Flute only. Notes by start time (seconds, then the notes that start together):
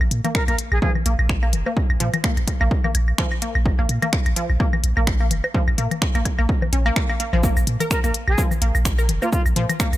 0.35 A#4
0.48 A#4
0.72 G#4
0.82 G#4
7.91 A#4
8.04 A#4
8.28 G#4
9.22 F4
9.33 F4